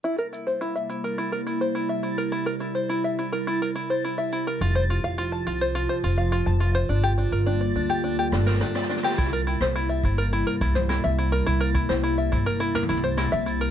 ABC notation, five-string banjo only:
X:1
M:4/4
L:1/16
Q:1/4=105
K:Cmix
V:1 name="Five-string banjo"
E B E c E e E B E B E c E e E B | E B E c E e E B E B E c E e E B | F c F f F a F c F c F f F a F c | D G D B D d D G D G D B D d D G |
E B E c E e E B E B E c E e E B | E B E c E e E B E B E c E e E B |]